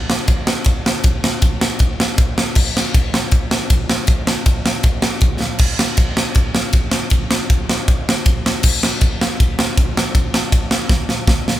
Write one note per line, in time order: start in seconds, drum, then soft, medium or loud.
0.10 snare loud
0.28 kick loud
0.28 ride medium
0.47 snare loud
0.64 kick loud
0.64 ride medium
0.86 snare loud
1.04 kick loud
1.04 ride medium
1.24 snare loud
1.42 kick loud
1.42 ride medium
1.61 snare loud
1.79 kick loud
1.79 ride medium
2.00 snare loud
2.18 kick loud
2.18 ride medium
2.38 snare loud
2.55 kick loud
2.55 crash loud
2.77 snare loud
2.94 kick loud
2.94 ride medium
3.14 snare loud
3.31 kick loud
3.31 ride medium
3.51 snare loud
3.70 kick loud
3.70 ride medium
3.90 snare loud
4.07 kick loud
4.07 ride medium
4.27 snare loud
4.46 kick loud
4.46 ride medium
4.66 snare loud
4.83 kick loud
4.83 ride medium
5.02 snare loud
5.21 kick loud
5.21 ride medium
5.41 snare medium
5.59 kick loud
5.59 crash loud
5.79 snare loud
5.97 kick loud
5.97 ride medium
6.17 snare loud
6.35 kick loud
6.35 ride medium
6.55 snare loud
6.73 kick loud
6.73 ride medium
6.91 snare loud
7.10 kick loud
7.10 ride medium
7.31 snare loud
7.50 kick loud
7.50 ride medium
7.69 snare loud
7.88 kick loud
7.88 ride medium
8.09 snare loud
8.26 kick loud
8.26 ride medium
8.46 snare loud
8.63 kick loud
8.63 crash loud
8.83 snare loud
9.01 kick loud
9.01 ride medium
9.21 snare loud
9.40 kick loud
9.40 ride medium
9.59 snare loud
9.77 kick loud
9.77 ride medium
9.97 snare loud
10.15 kick loud
10.15 ride medium
10.34 snare loud
10.52 kick loud
10.52 ride medium
10.71 snare loud
10.89 kick loud
10.89 snare medium
11.09 snare medium
11.27 kick loud
11.27 snare loud
11.48 snare loud